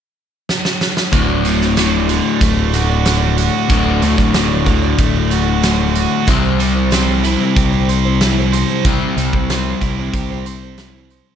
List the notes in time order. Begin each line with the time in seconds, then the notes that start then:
0.49 snare
0.65 snare
0.81 snare
0.97 snare
1.11 D1 D2 A2 D3 A3 D4 F#4 D5, kick, closed hi-hat
1.44 A2 A3 D4 F#4 D5, closed hi-hat
1.60 D4 F#4 D5, snare
1.76 A2 D3 A3 D4 F#4 D5, snare, closed hi-hat
2.08 D3 A3 D4 F#4 D5, closed hi-hat
2.25 D4 F#4 D5
2.41 D1 A3, kick, closed hi-hat
2.57 D4 F#4 D5
2.72 A3 D4 F#4 D5, snare, closed hi-hat
2.89 D4 F#4 D5
3.05 D3 A3 D4 F#4 D5, snare, closed hi-hat
3.22 D4 F#4 D5
3.38 F#4, closed hi-hat
3.54 D4 F#4 D5
3.69 D1 D2 A2 D3 A3 D4 F#4 D5, kick, closed hi-hat
4.01 D2 A2 A3 D4 F#4 D5, closed hi-hat
4.17 D1 D4 F#4 D5, kick, snare
4.33 A2 D3 A3 D4 F#4 D5, snare, closed hi-hat
4.65 D2 D3 A3 D4 F#4 D5, kick, closed hi-hat
4.82 D4 F#4 D5
4.98 D1 A3, kick, closed hi-hat
5.14 D4 F#4 D5
5.29 A3 D4 F#4 D5, closed hi-hat
5.45 D4 F#4 D5
5.62 D3 A3 D4 F#4 D5, snare, closed hi-hat
5.78 D4 F#4 D5
5.95 F#4, closed hi-hat
6.27 C2 C3 E3 G3 C4 E4 C5, kick, closed hi-hat
6.58 G3 C4 E4 C5, closed hi-hat
6.74 G3 C4 E4 C5
6.91 C3 E3 G3 C4 E4 C5, snare, closed hi-hat
7.23 G3 C4 E4 C5, closed hi-hat
7.40 G3 C4 E4 C5
7.56 C2 G4, kick, closed hi-hat
7.72 G3 C4 E4 C5
7.89 G3 C4 E4 C5, closed hi-hat
8.05 G3 C4 E4 C5
8.21 C3 E3 G3 C4 E4 C5, snare, closed hi-hat
8.37 G3 C4 E4 C5
8.53 C5, closed hi-hat
8.69 G3 C4 E4 C5
8.85 C2 C3 E3 G3 C4 E4 C5, kick, closed hi-hat
9.17 C2 G3 C4 E4 C5, closed hi-hat
9.33 C2 G3 C4 E4 C5, kick
9.50 C3 E3 G3 C4 E4 C5, snare, closed hi-hat
9.81 C2 G3 C4 E4, kick, closed hi-hat
9.86 C5
9.98 G3 C4 E4 C5
10.13 C2 G4, kick, closed hi-hat
10.30 G3 C4 E4 C5
10.45 G3 C4 E4 C5, closed hi-hat
10.63 G3 C4 E4 C5
10.78 C3 E3 G3 C4 E4 C5, snare, closed hi-hat
10.95 G3 C4 E4 C5
11.10 C5, closed hi-hat
11.27 C4 E4 C5